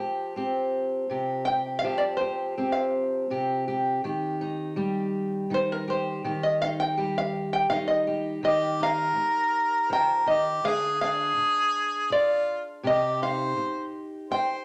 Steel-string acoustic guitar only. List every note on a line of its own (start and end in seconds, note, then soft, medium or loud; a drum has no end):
0.00 1.83 F3 medium
0.00 0.37 G4 medium
0.36 2.57 C4 medium
0.36 1.10 G4 medium
1.09 1.83 C3 medium
1.09 1.48 G4 medium
1.48 1.84 G4 medium
1.84 4.04 F3 medium
1.84 2.20 G4 medium
2.21 2.58 G4 medium
2.57 6.07 C4 medium
2.57 3.31 G4 medium
3.30 4.04 C3 medium
3.30 3.67 G4 medium
3.68 4.04 G4 medium
4.04 5.50 D#3 medium
4.04 4.77 G4 medium
4.41 5.51 D#4 medium
4.76 6.97 G3 medium
4.76 5.87 G4 medium
5.50 6.24 D#3 medium
5.50 6.61 D#4 medium
5.88 6.25 G4 medium
6.24 7.69 D#3 medium
6.24 6.96 G4 medium
6.62 7.70 D#4 medium
6.97 8.40 G3 medium
6.97 8.06 G4 medium
7.70 8.39 D#3 medium
7.70 8.40 D#4 medium
8.07 8.43 G4 medium
8.43 9.15 D#3 medium
8.43 10.64 G4 medium
8.80 10.59 D#4 medium
9.16 muted steel-string acoustic guitar stroke medium
9.90 10.27 F3 medium
10.26 10.64 D#3 medium
10.64 11.35 D3 medium
10.64 12.80 G#4 medium
11.01 12.84 D4 medium
11.37 muted steel-string acoustic guitar stroke medium
12.10 muted steel-string acoustic guitar stroke medium
12.83 13.56 C3 medium
12.83 14.65 G4 medium
13.22 14.65 D#4 medium
13.57 muted steel-string acoustic guitar stroke medium
14.31 muted steel-string acoustic guitar stroke medium